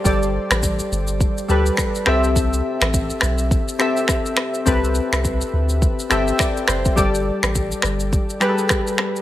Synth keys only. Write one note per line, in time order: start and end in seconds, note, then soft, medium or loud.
0.00 0.04 G3 medium
0.00 0.05 G4 medium
0.00 0.06 A4 medium
0.00 2.09 C5 medium
0.00 0.07 D5 medium
0.04 1.08 G3 medium
0.04 1.09 G4 medium
0.04 1.09 A4 medium
0.04 1.10 D5 medium
1.48 2.07 G3 medium
1.48 2.06 G4 medium
1.48 2.06 A4 medium
1.48 2.08 B4 medium
2.06 3.10 C4 medium
2.06 3.11 G4 medium
2.06 3.11 A4 medium
2.06 3.12 E5 loud
3.79 4.57 C4 medium
3.79 4.58 G4 medium
3.79 4.58 A4 medium
3.79 4.59 E5 medium
4.66 5.70 C4 medium
4.66 5.70 G4 medium
4.66 5.71 A4 medium
4.66 5.71 B4 medium
6.10 6.88 C4 medium
6.10 6.89 G4 medium
6.10 6.89 A4 medium
6.10 6.26 E5 medium
6.10 6.26 G5 medium
6.28 6.39 E5 medium
6.39 6.66 D5 medium
6.68 6.95 C5 medium
6.96 8.00 G3 medium
6.96 8.01 G4 medium
6.96 8.01 A4 medium
6.96 8.02 D5 medium
8.40 9.19 G3 medium
8.40 9.19 G4 medium
8.40 8.49 G#4 medium
8.40 9.20 B4 medium
8.49 9.22 A4 medium